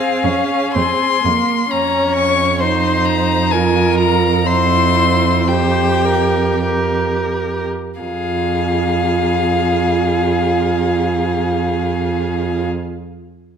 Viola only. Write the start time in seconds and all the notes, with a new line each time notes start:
Already playing: C4
0.24 C#4
0.75 C4
1.24 A#3
1.71 C#4
2.61 D#4
3.52 F4
4.47 E4
5.48 G4
6.64 G4
8.01 F4